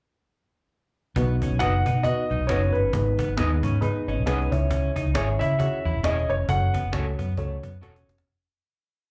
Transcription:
1.16 fingered electric bass B1, upright piano B2 B3 D#4 F#4 B4, clean electric guitar B3, cajon bass
1.42 clean electric guitar C#4, cajon bass
1.51 fingered electric bass B1, cajon slap
1.59 fingered electric bass F#1, upright piano B3 D#4 F#4 B4, clean electric guitar D#4 F#4 B4 D#5, grand piano F#5, cajon slap
1.86 fingered electric bass B2, clean electric guitar D#4, cajon bass
2.03 upright piano B3 D#4 F#4 B4, clean electric guitar F#4, grand piano D#5, cajon bass, cajon slap
2.30 fingered electric bass B1, clean electric guitar D#4, cajon slap
2.39 fingered electric bass B1
2.47 fingered electric bass F#1, upright piano B3 D#4 F#4 B4, clean electric guitar C#4 D#4 F#4 B4 D#5, grand piano C#5, cajon slap
2.62 cajon slap
2.73 fingered electric bass G1, grand piano B4, cajon slap
2.92 fingered electric bass G#1, upright piano G#2 B3 D#4 G#4 B4, cajon bass
3.19 clean electric guitar B3, cajon bass
3.29 fingered electric bass G#1, cajon slap
3.37 fingered electric bass D#2, upright piano B3 D#4 G#4 B4, clean electric guitar B3 D#4 G#4 B4 D#5, cajon slap
3.63 fingered electric bass G#2, clean electric guitar C#4, upright piano C#6, cajon bass
3.81 upright piano B3 D#4 G#4 B4 B5, clean electric guitar D#4, cajon bass, cajon slap
4.08 fingered electric bass G#1, clean electric guitar C#4, upright piano D#5, cajon slap
4.17 fingered electric bass B1
4.26 fingered electric bass C2, upright piano B3 D#4 G#4 B4 F#5, clean electric guitar C#4 D#4 G#4 B4 D#5, cajon slap
4.41 cajon slap
4.51 fingered electric bass C#2, upright piano C#3 C#4 E4 G#4 C#5 E5, cajon bass
4.71 clean electric guitar C#4, cajon bass
4.96 clean electric guitar D#4, cajon bass
5.06 fingered electric bass C#2, cajon slap
5.14 fingered electric bass G#1, clean electric guitar C#4 E4 G#4 C#5, upright piano C#4 E4 G#4 C#5, cajon slap
5.39 fingered electric bass C#3, clean electric guitar E4, grand piano E5, cajon bass
5.59 upright piano C#4 E4 G#4 C#5, clean electric guitar F#4, cajon bass, cajon slap
5.85 fingered electric bass E2, clean electric guitar E4, cajon slap
5.95 fingered electric bass E1
6.03 fingered electric bass E1, clean electric guitar C#4 E4 G#4 C#5, upright piano C#4 E4 G#4 C#5, grand piano D#5, cajon slap
6.18 cajon slap
6.29 fingered electric bass F1, grand piano C#5, cajon slap
6.49 fingered electric bass F#1, upright piano C#4 F#4 A4 C#5, grand piano F#5, cajon bass
6.74 clean electric guitar B3, cajon bass
6.84 fingered electric bass F#1
6.92 fingered electric bass C#2, clean electric guitar A3 C#4 F#4 A4 C#5, upright piano C#4 F#4 A4 C#5, cajon slap
7.19 fingered electric bass F#2, clean electric guitar B3, cajon bass
7.30 cajon slap
7.37 fingered electric bass C#2, clean electric guitar A3, upright piano C#4 F#4 A4 C#5, cajon bass, cajon slap
7.63 fingered electric bass F#2, clean electric guitar B3, cajon bass
7.81 fingered electric bass E1, clean electric guitar C#4 F#4 A4 C#5, upright piano C#4 F#4 A4 C#5, cajon slap
7.96 cajon slap
8.07 fingered electric bass F1, cajon slap
8.18 cajon slap

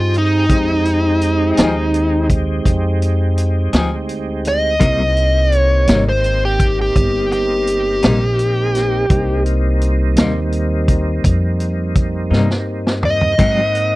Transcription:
Already playing: upright bass G2, tonewheel organ C4 D#4 G4 G#4, lead electric guitar F4
0.14 lead electric guitar D#4, closed hi-hat
0.49 upright bass F2, tonewheel organ G#3 C4 D#4 G4, kick, closed hi-hat
0.85 closed hi-hat
1.21 closed hi-hat
1.57 upright bass D#2, clean electric guitar F3 C4 D#4 G#4, snare, closed hi-hat
1.94 closed hi-hat
2.30 kick, closed hi-hat
2.65 upright bass F2, kick, closed hi-hat
3.02 closed hi-hat
3.38 closed hi-hat
3.73 upright bass D2, clean electric guitar F3 C4 D#4 G#4, snare, closed hi-hat
4.09 closed hi-hat
4.45 lead electric guitar D#5, closed hi-hat
4.79 upright bass C2, clean electric guitar C3 G3 A#3 D#4, tonewheel organ A#3 C4 D#4 G4, kick, closed hi-hat
5.17 closed hi-hat
5.52 lead electric guitar C#5, closed hi-hat
5.87 upright bass G#1, clean electric guitar C3 G3 A#3 D#4, snare, closed hi-hat
6.09 lead electric guitar C5
6.24 closed hi-hat
6.45 lead electric guitar G4
6.60 kick, closed hi-hat
6.81 lead electric guitar G4
6.96 upright bass G1, kick, closed hi-hat
7.32 lead electric guitar G4, closed hi-hat
7.67 closed hi-hat
8.03 upright bass A#1, clean electric guitar C3 G3 A#3 D#4, snare, closed hi-hat
8.39 closed hi-hat
8.75 snare, closed hi-hat
9.10 upright bass C2, tonewheel organ G3 A#3 C4 D#4, kick, closed hi-hat
9.46 closed hi-hat
9.81 closed hi-hat
10.16 upright bass D#2, clean electric guitar C3 G3 A#3 D#4, snare, closed hi-hat
10.52 closed hi-hat
10.88 kick, closed hi-hat
11.24 upright bass F2, kick, closed hi-hat
11.60 closed hi-hat
11.95 kick, closed hi-hat
12.30 upright bass G2, clean electric guitar C3 G3 A#3 D#4, snare
12.50 snare
12.87 snare
13.03 lead electric guitar D#5, floor tom
13.21 floor tom
13.38 clean electric guitar G#2 F#3 C4 D#4, upright bass G#2, tonewheel organ A#3 C4 D#4 F#5, kick, closed hi-hat, crash
13.75 closed hi-hat

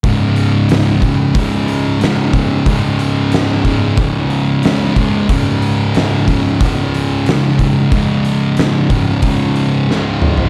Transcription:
0.04 distorted electric guitar C#2 G#2 C#3, kick, open hi-hat
0.36 open hi-hat
0.69 snare, open hi-hat
1.02 distorted electric guitar C#2 G#2 C#3, kick, open hi-hat
1.34 distorted electric guitar C#2 G#2 C#3, kick, open hi-hat
1.68 open hi-hat
2.00 distorted electric guitar C#2 G#2 C#3, snare, open hi-hat
2.33 kick, open hi-hat
2.66 distorted electric guitar C#2 G#2 C#3, kick, open hi-hat
2.99 open hi-hat
3.32 snare, open hi-hat
3.65 distorted electric guitar C#2 G#2 C#3, kick, open hi-hat
3.97 distorted electric guitar C#2 G#2, kick, open hi-hat
4.01 distorted electric guitar C#3
4.30 open hi-hat
4.63 distorted electric guitar C#2 G#2 C#3, snare, open hi-hat
4.96 kick, open hi-hat
5.29 distorted electric guitar C#2 G#2 C#3, kick, open hi-hat
5.62 open hi-hat
5.95 snare, open hi-hat
6.28 distorted electric guitar C#2 G#2 C#3, kick, open hi-hat
6.61 distorted electric guitar C#2 G#2 C#3, kick, open hi-hat
6.94 open hi-hat
7.26 distorted electric guitar C#2 G#2 C#3, snare, open hi-hat
7.59 kick, open hi-hat
7.92 distorted electric guitar C#2 G#2 C#3, kick, open hi-hat
8.25 open hi-hat
8.57 snare, open hi-hat
8.90 distorted electric guitar C#2 G#2 C#3, kick, open hi-hat
9.22 distorted electric guitar C#2 G#2 C#3, kick, open hi-hat
9.56 open hi-hat
9.89 distorted electric guitar C#2 G#2 C#3, snare
10.22 mid tom
10.37 floor tom

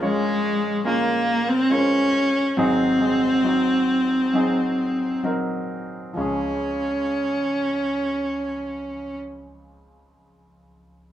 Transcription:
Already playing: grand piano A#1 A#2 F4 A#4
0.00 grand piano G#3 C#4 F4 C#5, cello G#3
0.85 grand piano G#3 C#4 F4 A#4, cello A#3
1.49 cello C4
1.70 grand piano G#3 C#4 F4 A#4, cello C#4
1.78 grand piano C5
2.57 grand piano G#1 G#2 F#3 C4 D#4 G#4, cello C4
3.00 grand piano F#3 C4 D#4 G#4
3.44 grand piano F#3 C4 D#4 F#4
4.34 grand piano F#3 C4 D#4 G#4
5.23 grand piano F#3 C4 D#4 A#4
6.13 grand piano C#2 F3 G#3
6.18 grand piano C#4 G#4, cello C#4

